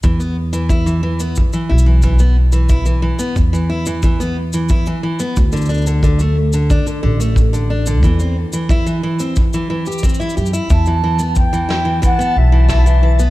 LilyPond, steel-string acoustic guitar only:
\new Staff \with { instrumentName = "Steel-string acoustic guitar" } { \clef bass \time 4/4 \key e \minor \tempo 4 = 90 e16 b16 r16 e16 e'16 e16 e16 b16 r16 e16 e'16 e16 e16 b16 r16 e16 | e'16 e16 e16 b16 r16 e16 e'16 e16 e16 b16 r16 e16 e'16 e16 e16 b16 | r16 d16 d'16 d16 d16 a16 r16 d16 d'16 d16 d16 a16 r16 d16 d'16 d16 | e16 c'16 r16 e16 e'16 e16 e16 c'16 r16 e16 e16 g'16 c'16 e'16 g'16 e'16 |
e'16 e16 e16 b16 r16 e16 e'16 e16 e16 b16 r16 e16 e'16 e16 e16 b16 | }